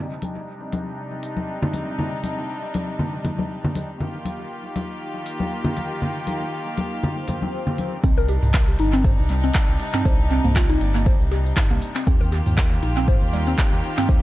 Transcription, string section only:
0, 0, Header, 1, 2, 480
1, 0, Start_track
1, 0, Key_signature, -3, "minor"
1, 0, Tempo, 504202
1, 1893, Time_signature, 4, 2, 24, 8
1, 13537, End_track
2, 0, Start_track
2, 0, Title_t, "String section"
2, 0, Program_c, 0, 48
2, 0, Note_on_c, 0, 48, 76
2, 0, Note_on_c, 0, 55, 69
2, 0, Note_on_c, 0, 62, 67
2, 0, Note_on_c, 0, 63, 83
2, 3772, Note_off_c, 0, 55, 0
2, 3773, Note_off_c, 0, 62, 0
2, 3773, Note_off_c, 0, 63, 0
2, 3774, Note_off_c, 0, 48, 0
2, 3811, Note_on_c, 0, 58, 70
2, 3812, Note_on_c, 0, 67, 83
2, 3814, Note_on_c, 0, 65, 69
2, 3815, Note_on_c, 0, 51, 81
2, 7614, Note_off_c, 0, 58, 0
2, 7615, Note_off_c, 0, 67, 0
2, 7616, Note_off_c, 0, 51, 0
2, 7616, Note_off_c, 0, 65, 0
2, 7652, Note_on_c, 0, 48, 82
2, 7652, Note_on_c, 0, 62, 79
2, 7653, Note_on_c, 0, 55, 77
2, 7653, Note_on_c, 0, 63, 92
2, 11454, Note_off_c, 0, 48, 0
2, 11454, Note_off_c, 0, 62, 0
2, 11455, Note_off_c, 0, 55, 0
2, 11455, Note_off_c, 0, 63, 0
2, 11491, Note_on_c, 0, 51, 86
2, 11491, Note_on_c, 0, 65, 78
2, 11492, Note_on_c, 0, 67, 95
2, 11493, Note_on_c, 0, 58, 77
2, 13537, Note_off_c, 0, 51, 0
2, 13537, Note_off_c, 0, 58, 0
2, 13537, Note_off_c, 0, 65, 0
2, 13537, Note_off_c, 0, 67, 0
2, 13537, End_track
0, 0, End_of_file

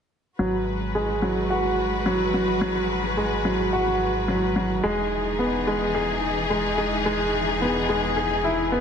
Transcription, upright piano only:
0, 0, Header, 1, 2, 480
1, 0, Start_track
1, 0, Key_signature, 5, "minor"
1, 0, Tempo, 555556
1, 340, Time_signature, 4, 2, 24, 8
1, 7608, End_track
2, 0, Start_track
2, 0, Title_t, "Upright piano"
2, 0, Program_c, 0, 0
2, 337, Note_on_c, 0, 54, 70
2, 475, Note_off_c, 0, 54, 0
2, 514, Control_c, 0, 64, 127
2, 820, Note_on_c, 0, 56, 56
2, 1048, Note_off_c, 0, 56, 0
2, 1056, Note_on_c, 0, 54, 60
2, 1286, Note_off_c, 0, 54, 0
2, 1299, Note_on_c, 0, 66, 63
2, 1527, Note_off_c, 0, 66, 0
2, 1778, Note_on_c, 0, 54, 64
2, 2007, Note_off_c, 0, 54, 0
2, 2022, Note_on_c, 0, 54, 55
2, 2245, Note_off_c, 0, 54, 0
2, 2258, Note_on_c, 0, 54, 78
2, 2396, Note_off_c, 0, 54, 0
2, 2739, Note_on_c, 0, 56, 57
2, 2968, Note_off_c, 0, 56, 0
2, 2980, Note_on_c, 0, 54, 63
2, 3208, Note_off_c, 0, 54, 0
2, 3222, Note_on_c, 0, 66, 66
2, 3449, Note_off_c, 0, 66, 0
2, 3699, Note_on_c, 0, 54, 58
2, 3927, Note_off_c, 0, 54, 0
2, 3940, Note_on_c, 0, 54, 58
2, 4168, Note_off_c, 0, 54, 0
2, 4177, Note_on_c, 0, 56, 82
2, 4190, Control_c, 0, 64, 0
2, 4315, Note_off_c, 0, 56, 0
2, 4338, Control_c, 0, 64, 127
2, 4657, Note_on_c, 0, 59, 59
2, 4887, Note_off_c, 0, 59, 0
2, 4900, Note_on_c, 0, 56, 66
2, 5128, Note_off_c, 0, 56, 0
2, 5138, Note_on_c, 0, 68, 65
2, 5367, Note_off_c, 0, 68, 0
2, 5617, Note_on_c, 0, 56, 65
2, 5843, Note_off_c, 0, 56, 0
2, 5856, Note_on_c, 0, 56, 60
2, 6084, Note_off_c, 0, 56, 0
2, 6097, Note_on_c, 0, 56, 79
2, 6235, Note_off_c, 0, 56, 0
2, 6578, Note_on_c, 0, 59, 59
2, 6807, Note_off_c, 0, 59, 0
2, 6816, Note_on_c, 0, 56, 66
2, 7046, Note_off_c, 0, 56, 0
2, 7056, Note_on_c, 0, 68, 65
2, 7286, Note_off_c, 0, 68, 0
2, 7293, Note_on_c, 0, 64, 58
2, 7434, Note_off_c, 0, 64, 0
2, 7534, Note_on_c, 0, 59, 65
2, 7608, Note_off_c, 0, 59, 0
2, 7608, End_track
0, 0, End_of_file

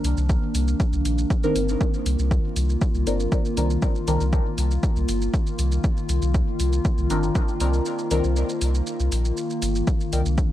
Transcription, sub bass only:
0, 0, Header, 1, 2, 480
1, 0, Start_track
1, 0, Key_signature, -3, "minor"
1, 0, Tempo, 504202
1, 1721, Time_signature, 4, 2, 24, 8
1, 10018, End_track
2, 0, Start_track
2, 0, Title_t, "Sub bass"
2, 0, Program_c, 0, 38
2, 39, Note_on_c, 0, 36, 99
2, 138, Note_off_c, 0, 36, 0
2, 164, Note_on_c, 0, 36, 95
2, 351, Note_off_c, 0, 36, 0
2, 520, Note_on_c, 0, 36, 103
2, 710, Note_off_c, 0, 36, 0
2, 884, Note_on_c, 0, 36, 88
2, 975, Note_off_c, 0, 36, 0
2, 999, Note_on_c, 0, 34, 85
2, 1190, Note_off_c, 0, 34, 0
2, 1480, Note_on_c, 0, 31, 91
2, 1671, Note_off_c, 0, 31, 0
2, 1960, Note_on_c, 0, 36, 102
2, 2058, Note_off_c, 0, 36, 0
2, 2084, Note_on_c, 0, 36, 96
2, 2271, Note_off_c, 0, 36, 0
2, 2440, Note_on_c, 0, 36, 103
2, 2630, Note_off_c, 0, 36, 0
2, 2804, Note_on_c, 0, 36, 90
2, 2895, Note_off_c, 0, 36, 0
2, 2920, Note_on_c, 0, 31, 82
2, 3111, Note_off_c, 0, 31, 0
2, 3400, Note_on_c, 0, 36, 100
2, 3591, Note_off_c, 0, 36, 0
2, 3880, Note_on_c, 0, 36, 102
2, 3978, Note_off_c, 0, 36, 0
2, 4005, Note_on_c, 0, 36, 94
2, 4191, Note_off_c, 0, 36, 0
2, 4360, Note_on_c, 0, 36, 106
2, 4550, Note_off_c, 0, 36, 0
2, 4725, Note_on_c, 0, 36, 90
2, 4816, Note_off_c, 0, 36, 0
2, 4841, Note_on_c, 0, 31, 84
2, 5031, Note_off_c, 0, 31, 0
2, 5321, Note_on_c, 0, 36, 96
2, 5511, Note_off_c, 0, 36, 0
2, 5800, Note_on_c, 0, 36, 99
2, 5898, Note_off_c, 0, 36, 0
2, 5924, Note_on_c, 0, 36, 96
2, 6111, Note_off_c, 0, 36, 0
2, 6281, Note_on_c, 0, 36, 105
2, 6471, Note_off_c, 0, 36, 0
2, 6646, Note_on_c, 0, 36, 92
2, 6736, Note_off_c, 0, 36, 0
2, 6761, Note_on_c, 0, 31, 81
2, 6951, Note_off_c, 0, 31, 0
2, 7241, Note_on_c, 0, 36, 100
2, 7431, Note_off_c, 0, 36, 0
2, 7721, Note_on_c, 0, 36, 103
2, 7818, Note_off_c, 0, 36, 0
2, 7845, Note_on_c, 0, 36, 95
2, 8032, Note_off_c, 0, 36, 0
2, 8200, Note_on_c, 0, 36, 106
2, 8391, Note_off_c, 0, 36, 0
2, 8565, Note_on_c, 0, 36, 90
2, 8656, Note_off_c, 0, 36, 0
2, 8680, Note_on_c, 0, 34, 84
2, 8871, Note_off_c, 0, 34, 0
2, 9160, Note_on_c, 0, 31, 91
2, 9350, Note_off_c, 0, 31, 0
2, 9640, Note_on_c, 0, 36, 102
2, 9738, Note_off_c, 0, 36, 0
2, 9763, Note_on_c, 0, 36, 94
2, 9950, Note_off_c, 0, 36, 0
2, 10018, End_track
0, 0, End_of_file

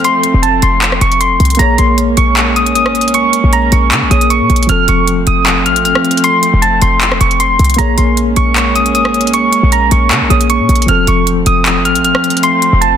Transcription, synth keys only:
0, 0, Header, 1, 2, 480
1, 0, Start_track
1, 0, Key_signature, -5, "minor"
1, 0, Tempo, 387097
1, 56, Time_signature, 4, 2, 24, 8
1, 16084, End_track
2, 0, Start_track
2, 0, Title_t, "Synth keys"
2, 0, Program_c, 0, 88
2, 58, Note_on_c, 0, 84, 101
2, 509, Note_off_c, 0, 84, 0
2, 528, Note_on_c, 0, 81, 91
2, 753, Note_off_c, 0, 81, 0
2, 778, Note_on_c, 0, 84, 84
2, 1228, Note_off_c, 0, 84, 0
2, 1258, Note_on_c, 0, 85, 90
2, 1479, Note_off_c, 0, 85, 0
2, 1496, Note_on_c, 0, 84, 82
2, 1947, Note_off_c, 0, 84, 0
2, 1972, Note_on_c, 0, 82, 93
2, 2196, Note_off_c, 0, 82, 0
2, 2213, Note_on_c, 0, 84, 73
2, 2436, Note_off_c, 0, 84, 0
2, 2695, Note_on_c, 0, 85, 93
2, 3147, Note_off_c, 0, 85, 0
2, 3176, Note_on_c, 0, 87, 80
2, 3398, Note_off_c, 0, 87, 0
2, 3416, Note_on_c, 0, 87, 88
2, 3867, Note_off_c, 0, 87, 0
2, 3899, Note_on_c, 0, 85, 100
2, 4349, Note_off_c, 0, 85, 0
2, 4378, Note_on_c, 0, 82, 91
2, 4599, Note_off_c, 0, 82, 0
2, 4620, Note_on_c, 0, 85, 74
2, 5069, Note_off_c, 0, 85, 0
2, 5094, Note_on_c, 0, 87, 84
2, 5317, Note_off_c, 0, 87, 0
2, 5336, Note_on_c, 0, 85, 86
2, 5788, Note_off_c, 0, 85, 0
2, 5821, Note_on_c, 0, 89, 100
2, 6040, Note_off_c, 0, 89, 0
2, 6061, Note_on_c, 0, 85, 82
2, 6280, Note_off_c, 0, 85, 0
2, 6539, Note_on_c, 0, 87, 89
2, 6989, Note_off_c, 0, 87, 0
2, 7017, Note_on_c, 0, 89, 79
2, 7238, Note_off_c, 0, 89, 0
2, 7258, Note_on_c, 0, 89, 77
2, 7708, Note_off_c, 0, 89, 0
2, 7739, Note_on_c, 0, 84, 105
2, 8189, Note_off_c, 0, 84, 0
2, 8208, Note_on_c, 0, 81, 94
2, 8434, Note_off_c, 0, 81, 0
2, 8458, Note_on_c, 0, 84, 82
2, 8908, Note_off_c, 0, 84, 0
2, 8938, Note_on_c, 0, 85, 88
2, 9159, Note_off_c, 0, 85, 0
2, 9176, Note_on_c, 0, 84, 84
2, 9627, Note_off_c, 0, 84, 0
2, 9652, Note_on_c, 0, 82, 96
2, 9875, Note_off_c, 0, 82, 0
2, 9893, Note_on_c, 0, 84, 72
2, 10116, Note_off_c, 0, 84, 0
2, 10374, Note_on_c, 0, 85, 92
2, 10827, Note_off_c, 0, 85, 0
2, 10856, Note_on_c, 0, 87, 83
2, 11078, Note_off_c, 0, 87, 0
2, 11096, Note_on_c, 0, 87, 86
2, 11548, Note_off_c, 0, 87, 0
2, 11579, Note_on_c, 0, 85, 99
2, 12029, Note_off_c, 0, 85, 0
2, 12058, Note_on_c, 0, 82, 90
2, 12279, Note_off_c, 0, 82, 0
2, 12300, Note_on_c, 0, 85, 76
2, 12749, Note_off_c, 0, 85, 0
2, 12775, Note_on_c, 0, 87, 82
2, 12997, Note_off_c, 0, 87, 0
2, 13017, Note_on_c, 0, 85, 88
2, 13468, Note_off_c, 0, 85, 0
2, 13500, Note_on_c, 0, 89, 100
2, 13720, Note_off_c, 0, 89, 0
2, 13742, Note_on_c, 0, 85, 82
2, 13961, Note_off_c, 0, 85, 0
2, 14219, Note_on_c, 0, 87, 87
2, 14669, Note_off_c, 0, 87, 0
2, 14697, Note_on_c, 0, 89, 76
2, 14918, Note_off_c, 0, 89, 0
2, 14938, Note_on_c, 0, 89, 80
2, 15389, Note_off_c, 0, 89, 0
2, 15419, Note_on_c, 0, 84, 99
2, 15869, Note_off_c, 0, 84, 0
2, 15888, Note_on_c, 0, 81, 93
2, 16084, Note_off_c, 0, 81, 0
2, 16084, End_track
0, 0, End_of_file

